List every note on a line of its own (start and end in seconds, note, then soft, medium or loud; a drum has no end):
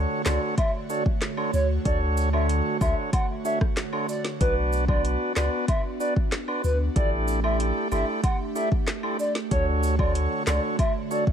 0.00 4.37 D3 medium
0.00 4.37 A3 medium
0.00 0.22 D4 medium
0.00 0.22 F#4 medium
0.00 6.92 F#4 medium
0.00 0.22 A4 medium
0.00 0.22 C#5 medium
0.00 4.37 C#5 medium
0.26 0.38 C#2 medium
0.26 0.55 D4 medium
0.26 0.55 F#4 medium
0.26 0.55 A4 medium
0.26 0.55 C#5 medium
0.26 0.39 D5 medium
0.26 snare loud
0.26 clap loud
0.26 cabasa medium
0.26 high woodblock medium
0.58 0.71 E5 medium
0.58 kick loud
0.58 closed hi-hat medium
0.58 high woodblock medium
0.89 1.03 D4 medium
0.89 1.03 F#4 medium
0.89 1.03 A4 medium
0.89 1.04 C#5 medium
0.89 1.03 D5 medium
0.89 cabasa medium
1.06 kick loud
1.22 snare loud
1.22 clap medium
1.22 closed hi-hat medium
1.37 1.51 D4 medium
1.37 1.51 F#4 medium
1.37 1.51 A4 medium
1.37 1.51 C#5 medium
1.37 high woodblock medium
1.53 1.78 D2 loud
1.53 1.67 C#5 medium
1.53 cabasa medium
1.85 2.61 D2 loud
1.85 2.29 D4 loud
1.85 2.29 F#4 medium
1.85 2.29 A4 medium
1.85 2.30 C#5 loud
1.85 1.99 D5 loud
1.85 kick loud
1.85 closed hi-hat medium
2.17 cabasa medium
2.33 2.77 D4 medium
2.33 2.77 F#4 medium
2.33 2.77 A4 medium
2.33 2.77 C#5 medium
2.33 2.47 E5 medium
2.33 high woodblock medium
2.49 closed hi-hat medium
2.81 2.93 C#2 medium
2.81 3.10 D4 medium
2.81 3.10 F#4 medium
2.81 3.11 A4 medium
2.81 3.11 C#5 medium
2.81 2.95 E5 medium
2.81 kick loud
2.81 cabasa medium
2.81 high woodblock medium
3.13 3.27 F#5 medium
3.13 kick loud
3.13 closed hi-hat medium
3.13 high woodblock medium
3.45 3.59 D4 medium
3.45 3.59 F#4 medium
3.45 3.59 A4 medium
3.45 3.59 C#5 medium
3.45 3.59 E5 medium
3.45 cabasa medium
3.61 kick loud
3.61 cross-stick loud
3.77 snare loud
3.77 clap medium
3.77 closed hi-hat medium
3.93 4.06 D4 medium
3.93 4.07 F#4 medium
3.93 4.07 A4 medium
3.93 4.07 C#5 medium
3.93 high woodblock medium
4.09 4.22 D5 medium
4.09 cabasa medium
4.25 snare medium
4.40 5.17 B1 loud
4.40 6.93 B3 medium
4.40 4.85 D4 loud
4.40 9.47 D4 medium
4.40 4.85 F#4 medium
4.40 4.54 B4 loud
4.40 4.85 B4 medium
4.40 4.85 D5 loud
4.40 kick loud
4.40 closed hi-hat medium
4.73 cabasa medium
4.88 5.32 D4 medium
4.88 5.33 F#4 medium
4.88 5.33 B4 medium
4.88 5.02 D5 medium
4.88 5.33 D5 medium
4.88 kick loud
4.88 high woodblock medium
5.05 closed hi-hat medium
5.36 5.49 C#2 medium
5.36 5.66 D4 medium
5.36 5.66 F#4 medium
5.36 5.66 B4 medium
5.36 5.50 D5 medium
5.36 5.66 D5 medium
5.36 snare loud
5.36 clap loud
5.36 cabasa medium
5.36 high woodblock medium
5.68 5.82 E5 medium
5.68 kick medium
5.68 closed hi-hat medium
5.68 high woodblock medium
6.00 6.14 D4 medium
6.00 6.14 F#4 medium
6.00 6.14 B4 medium
6.00 6.14 D5 medium
6.00 cabasa medium
6.16 kick loud
6.32 snare loud
6.32 clap medium
6.32 closed hi-hat medium
6.48 6.62 D4 medium
6.48 6.62 F#4 medium
6.48 6.62 B4 medium
6.48 6.62 D5 medium
6.48 high woodblock medium
6.64 6.89 D2 medium
6.64 6.78 B4 medium
6.64 cabasa medium
6.96 7.72 A1 loud
6.96 11.32 A3 medium
6.96 7.40 E4 loud
6.96 7.40 G4 medium
6.96 9.49 G4 medium
6.96 7.40 A4 medium
6.96 7.10 D5 loud
6.96 7.40 D5 loud
6.96 kick loud
6.96 closed hi-hat medium
7.28 cabasa medium
7.44 7.88 E4 medium
7.44 7.88 G4 medium
7.44 7.88 A4 medium
7.44 7.88 D5 medium
7.44 7.57 E5 medium
7.44 high woodblock medium
7.60 closed hi-hat medium
7.91 8.04 G1 loud
7.91 8.21 E4 medium
7.91 8.21 G4 medium
7.91 8.21 A4 medium
7.91 8.21 D5 medium
7.91 8.05 E5 medium
7.91 cabasa medium
7.91 high woodblock medium
8.23 8.37 F#5 medium
8.23 kick loud
8.23 closed hi-hat medium
8.23 high woodblock medium
8.55 8.69 E4 medium
8.55 8.69 G4 medium
8.55 8.69 A4 medium
8.55 8.69 D5 medium
8.55 8.69 E5 medium
8.55 cabasa medium
8.72 kick loud
8.88 snare loud
8.88 clap loud
8.88 closed hi-hat medium
9.03 9.17 E4 medium
9.03 9.17 G4 medium
9.03 9.17 A4 medium
9.03 9.17 D5 medium
9.03 high woodblock medium
9.19 9.33 D5 medium
9.19 cabasa medium
9.35 snare medium
9.51 10.27 D2 loud
9.51 11.32 D3 medium
9.51 9.95 D4 medium
9.51 9.95 F#4 medium
9.51 11.32 F#4 medium
9.51 9.95 A4 medium
9.51 9.65 C#5 loud
9.51 11.32 C#5 medium
9.51 9.95 C#5 loud
9.51 kick loud
9.51 closed hi-hat medium
9.83 cabasa medium
9.99 10.43 D4 medium
9.99 10.43 F#4 medium
9.99 10.43 A4 medium
9.99 10.43 C#5 medium
9.99 10.13 D5 medium
9.99 kick medium
9.99 high woodblock medium
10.15 closed hi-hat medium
10.47 10.59 C#2 medium
10.47 10.76 D4 medium
10.47 10.76 F#4 medium
10.47 10.76 A4 medium
10.47 10.77 C#5 medium
10.47 10.61 D5 medium
10.47 snare loud
10.47 clap loud
10.47 cabasa medium
10.47 high woodblock medium
10.79 10.93 E5 medium
10.79 kick medium
10.79 closed hi-hat medium
10.79 high woodblock medium
11.11 11.24 D4 medium
11.11 11.25 F#4 medium
11.11 11.25 A4 medium
11.11 11.25 C#5 medium
11.11 11.25 D5 medium
11.11 cabasa medium
11.27 kick loud